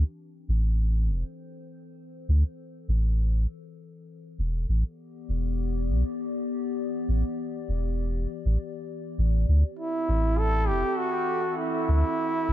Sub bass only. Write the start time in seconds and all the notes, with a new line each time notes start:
0.48 A1
1.08 E1
2.28 D2
2.88 A1
4.38 E1
4.68 A1
5.29 E1
5.88 B1
7.08 A1
7.68 E1
8.45 A1
9.18 A1
9.48 D2
10.08 A1
10.69 E1
11.88 D2
12.48 A1